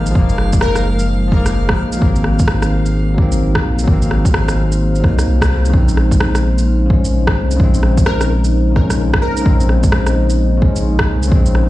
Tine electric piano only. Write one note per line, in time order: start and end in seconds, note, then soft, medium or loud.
0.00 0.11 F3 medium
0.00 0.15 G#3 medium
0.00 0.19 A#3 loud
0.11 1.26 F3 medium
0.11 1.29 G#3 medium
0.19 1.31 A#3 loud
1.28 1.97 F3 medium
1.32 1.99 G#3 medium
1.32 2.00 A#3 loud
1.97 3.13 F#3 medium
2.01 3.15 A#3 medium
2.05 3.18 C4 loud
3.14 3.83 F#3 medium
3.14 3.86 A#3 medium
3.22 3.88 C4 loud
3.84 4.99 F#3 medium
3.88 5.02 A#3 medium
3.88 5.04 C4 loud
5.00 5.70 F#3 medium
5.04 5.72 A#3 medium
5.08 5.74 D#4 medium
5.70 6.85 C#3 medium
5.74 6.88 G#3 medium
5.74 6.90 C4 loud
6.86 7.55 C#3 medium
6.86 7.57 G#3 medium
6.94 7.59 C#4 medium
7.56 8.70 C#3 medium
7.56 8.74 G#3 medium
7.64 8.76 C4 loud
8.72 9.40 C#3 medium
8.76 9.43 G#3 medium
8.80 9.46 C#4 medium
9.41 10.56 C#3 medium
9.41 10.59 G#3 medium
9.49 10.61 C4 loud
10.57 11.26 C#3 medium
10.61 11.29 G#3 medium
10.65 11.31 C#4 medium
11.28 11.69 C#3 medium
11.28 11.69 G#3 medium
11.36 11.69 C4 loud